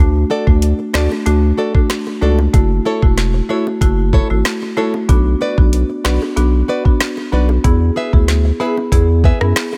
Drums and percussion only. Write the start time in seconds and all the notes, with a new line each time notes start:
0.47 kick
0.62 closed hi-hat
0.94 finger snap, snare
1.12 high bongo
1.26 closed hi-hat, high bongo
1.75 kick
1.90 finger snap, snare, closed hi-hat
2.07 high bongo
2.22 low bongo
2.39 high bongo
2.54 kick, closed hi-hat, high bongo
3.02 kick
3.18 snare, closed hi-hat
3.67 high bongo
3.81 kick, closed hi-hat, high bongo
4.13 kick
4.45 finger snap, snare, closed hi-hat
4.62 high bongo
4.77 low bongo
4.94 high bongo
5.09 kick, closed hi-hat, high bongo
5.58 kick
5.73 closed hi-hat
6.05 finger snap, snare
6.22 high bongo
6.37 closed hi-hat, high bongo
6.85 kick
7.00 finger snap, snare, closed hi-hat
7.17 high bongo
7.32 low bongo
7.49 high bongo
7.64 kick, closed hi-hat, high bongo
8.13 kick
8.28 snare, closed hi-hat
8.77 high bongo
8.92 kick, closed hi-hat, high bongo
9.24 kick
9.41 cross-stick
9.56 finger snap, snare, closed hi-hat
9.73 high bongo